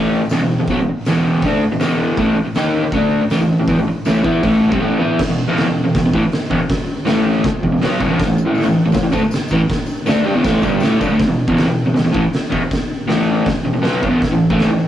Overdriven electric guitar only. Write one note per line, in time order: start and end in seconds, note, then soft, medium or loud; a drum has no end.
0.00 0.20 A2 medium
0.00 0.21 E3 medium
0.00 0.21 A3 loud
0.23 muted overdriven electric guitar stroke medium
0.32 0.40 E2 medium
0.32 0.40 B2 medium
0.43 0.56 E2 medium
0.43 0.57 B2 medium
0.60 0.69 E2 medium
0.60 0.68 B2 medium
0.70 0.78 B2 loud
0.70 0.78 F#3 loud
0.80 0.88 E2 medium
0.80 0.88 B2 medium
0.89 muted overdriven electric guitar stroke medium
1.07 1.43 E2 medium
1.07 1.43 B2 loud
1.07 1.44 E3 medium
1.44 1.62 D3 medium
1.44 1.62 A3 loud
1.44 1.62 D4 loud
1.63 muted overdriven electric guitar stroke medium
1.72 1.79 E2 medium
1.72 1.79 B2 medium
1.80 2.17 E2 medium
1.80 2.17 B2 loud
1.80 2.17 E3 loud
2.17 2.35 A2 loud
2.17 2.36 E3 loud
2.17 2.36 A3 loud
2.36 muted overdriven electric guitar stroke medium
2.46 muted overdriven electric guitar stroke medium
2.56 2.83 D#3 medium
2.56 2.84 A#3 medium
2.56 2.84 D#4 loud
2.84 muted overdriven electric guitar stroke medium
2.93 3.21 D3 medium
2.93 3.21 A3 loud
2.93 3.22 D4 loud
3.23 muted overdriven electric guitar stroke medium
3.31 3.39 A2 medium
3.31 3.39 E3 medium
3.40 3.55 A2 medium
3.40 3.56 E3 medium
3.59 3.68 A2 medium
3.59 3.67 E3 medium
3.69 3.78 E3 loud
3.69 3.78 B3 loud
3.79 3.87 A2 medium
3.79 3.88 E3 medium
3.88 muted overdriven electric guitar stroke medium
4.06 4.23 A2 medium
4.06 4.23 E3 medium
4.06 4.24 A3 loud
4.24 4.42 E3 medium
4.24 4.43 B3 medium
4.24 4.43 E4 loud
4.43 4.70 A2 medium
4.43 4.71 E3 medium
4.43 4.72 A3 loud
4.71 4.80 C3 medium
4.71 4.80 G3 medium
4.80 4.99 A2 medium
4.80 4.98 E3 medium
4.80 5.00 A3 medium
4.99 5.18 E3 medium
4.99 5.18 B3 medium
4.99 5.19 E4 loud
5.29 5.44 E2 medium
5.29 5.44 B2 medium
5.48 5.65 E2 medium
5.48 5.66 B2 medium
5.48 5.67 E3 medium
5.66 5.81 E2 medium
5.66 5.82 B2 medium
5.84 5.94 E2 medium
5.84 5.94 B2 medium
5.95 6.04 E2 medium
5.95 6.04 B2 medium
6.05 6.14 E2 medium
6.05 6.13 B2 medium
6.14 6.22 A2 medium
6.14 6.23 E3 loud
6.23 muted overdriven electric guitar stroke medium
6.50 6.59 E2 medium
6.50 6.60 B2 loud
7.06 7.43 A2 medium
7.06 7.43 E3 medium
7.06 7.44 A3 loud
7.44 muted overdriven electric guitar stroke medium
7.63 7.71 E2 medium
7.63 7.71 B2 medium
7.72 7.82 E2 medium
7.72 7.80 B2 medium
7.82 8.00 B2 medium
7.82 8.01 F#3 medium
7.82 8.01 B3 medium
7.99 8.09 G2 loud
7.99 8.10 D3 loud
8.09 8.19 E2 medium
8.09 8.19 B2 loud
8.26 8.43 A2 medium
8.26 8.43 E3 medium
8.45 8.63 A2 medium
8.45 8.64 E3 medium
8.45 8.66 A3 loud
8.64 8.80 A2 medium
8.64 8.81 E3 medium
8.86 8.91 A2 medium
8.86 8.93 E3 medium
8.93 9.02 A2 medium
8.93 9.02 E3 medium
9.03 9.12 A2 medium
9.03 9.13 E3 medium
9.12 9.22 D3 medium
9.12 9.22 A3 loud
9.24 muted overdriven electric guitar stroke medium
9.52 9.60 A2 medium
9.52 9.61 E3 loud
10.06 10.25 D3 medium
10.06 10.24 A3 loud
10.06 10.25 D4 loud
10.25 10.34 G3 loud
10.25 10.35 D4 loud
10.34 10.43 E3 medium
10.34 10.44 B3 loud
10.43 10.62 A2 medium
10.43 10.62 E3 loud
10.43 10.63 A3 loud
10.62 10.81 G2 medium
10.62 10.80 D3 medium
10.62 10.82 G3 loud
10.81 11.00 A2 medium
10.81 11.01 E3 loud
10.81 11.01 A3 loud
11.00 11.09 G2 medium
11.00 11.09 D3 loud
11.10 11.19 D3 medium
11.10 11.20 A3 loud
11.27 11.44 E2 medium
11.27 11.44 B2 medium
11.48 11.65 E2 medium
11.48 11.65 B2 medium
11.48 11.68 E3 loud
11.66 11.82 E2 medium
11.66 11.82 B2 medium
11.86 11.94 E2 medium
11.86 11.93 B2 medium
11.94 12.03 E2 medium
11.94 12.04 B2 medium
12.04 12.14 E2 medium
12.04 12.12 B2 medium
12.12 12.22 A2 loud
12.12 12.23 E3 loud
12.23 muted overdriven electric guitar stroke medium
12.50 12.60 E2 medium
12.50 12.61 B2 loud
13.08 13.45 A2 loud
13.08 13.46 E3 loud
13.08 13.46 A3 loud
13.47 muted overdriven electric guitar stroke medium
13.65 13.72 E2 medium
13.65 13.73 B2 medium
13.73 13.84 E2 medium
13.73 13.80 B2 medium
13.82 14.01 B2 medium
13.82 14.02 F#3 medium
13.82 14.02 B3 loud
14.02 14.09 G2 loud
14.02 14.09 D3 loud
14.09 14.20 E2 medium
14.09 14.20 B2 loud
14.31 14.47 A2 medium
14.31 14.47 E3 medium
14.50 14.69 A2 medium
14.50 14.69 E3 medium
14.50 14.69 A3 medium
14.70 14.85 A2 medium
14.70 14.85 E3 medium